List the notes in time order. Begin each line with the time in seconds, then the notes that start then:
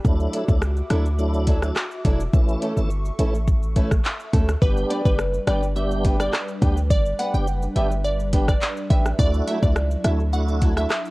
0.04 D2 F#3 A3 D4 E4 F#4 E5 D6, kick, shaker
0.20 shaker
0.33 F#3 D4 E4 A4, closed hi-hat, shaker
0.48 C#2 F#3 A3 D4 E4, kick, shaker
0.62 cross-stick, shaker
0.77 muted steel-string acoustic guitar stroke, shaker
0.90 D2 F#3 A3 D4 E4 A4, cross-stick, closed hi-hat, shaker
1.06 shaker
1.19 F#3 A3 D4 E4, shaker
1.34 shaker
1.47 F#3 D4 E4 A4, kick, closed hi-hat, shaker
1.62 F#3 A3 D4 E4, muted steel-string acoustic guitar stroke, cross-stick, shaker
1.76 cross-stick, clap, shaker
1.91 shaker
2.04 E1 F#3 A3 D4 E4 A4, kick, closed hi-hat, shaker
2.20 shaker
2.33 A1 E3 A3 C#4 E4 A4 C#6, kick, shaker
2.48 shaker
2.61 A3 C#4 E4 A4, closed hi-hat, shaker
2.77 G1 E3 A3 C#4 E4, shaker
2.90 shaker
3.05 muted steel-string acoustic guitar stroke, shaker
3.18 A1 E3 A3 C#4 E4 A4, closed hi-hat, shaker
3.34 shaker
3.47 kick, shaker
3.63 shaker
3.76 E3 A3 C#4 E4 A4, kick, closed hi-hat, shaker
3.91 muted steel-string acoustic guitar stroke, kick, cross-stick, shaker
4.04 clap, shaker
4.20 shaker
4.33 D2 A3 C#4 E4 A4, kick, closed hi-hat, shaker
4.49 cross-stick, shaker
4.62 G1 G3 B3 D4 G4 B4, kick, shaker
4.77 shaker
4.90 B3 D4 G4 B4 D5, closed hi-hat, shaker
5.05 F#1 G3 B3 D4 G4 B4, kick, shaker
5.19 cross-stick, shaker
5.34 muted steel-string acoustic guitar stroke, shaker
5.47 G1 G3 B3 D4 G4 B4 D5, cross-stick, closed hi-hat, shaker
5.63 shaker
5.76 G3 B3 D4 G4 E5, shaker
5.91 muted steel-string acoustic guitar stroke, shaker
6.04 B3 D4 G4 B4, kick, closed hi-hat, shaker
6.19 G3 B3 D4 G4 D5, cross-stick, shaker
6.33 cross-stick, clap, shaker
6.48 shaker
6.61 D2 G3 B3 D4 G4 B4, kick, closed hi-hat, shaker
6.77 shaker
6.90 G1 D5, kick, shaker
7.05 shaker
7.19 B3 D4 G4 B4 F#5, closed hi-hat, shaker
7.34 F#1 G3 B3 D4 G4 G5, shaker
7.47 shaker
7.62 muted steel-string acoustic guitar stroke, shaker
7.76 G1 G3 B3 D4 G4 B4 E5, closed hi-hat, shaker
7.92 shaker
8.05 D5, shaker
8.20 muted steel-string acoustic guitar stroke, shaker
8.33 G3 B3 D4 G4 B4, kick, closed hi-hat, shaker
8.48 D5, kick, cross-stick, shaker
8.61 clap, shaker
8.77 shaker
8.90 A1 B3 D4 G4 B4 E5, kick, closed hi-hat, shaker
9.06 cross-stick, shaker
9.19 D2 F#3 A3 D4 E4 F#4 D5, kick, shaker
9.34 shaker
9.47 F#3 A3 E4 A4 E5, closed hi-hat, shaker
9.62 C#2 A3 D4 E4 F#4 D5, kick, shaker
9.76 cross-stick, shaker
9.91 muted steel-string acoustic guitar stroke, shaker
10.04 D2 F#3 A3 D4 E4 F#4 A4 E5, cross-stick, closed hi-hat, shaker
10.20 shaker
10.33 A3 D4 E4 F#4 F#5, shaker
10.48 muted steel-string acoustic guitar stroke, shaker
10.61 F#3 A3 E4 A4, kick, closed hi-hat, shaker
10.77 A3 D4 E4 F#4 E5, cross-stick, shaker
10.90 cross-stick, clap, shaker
11.05 shaker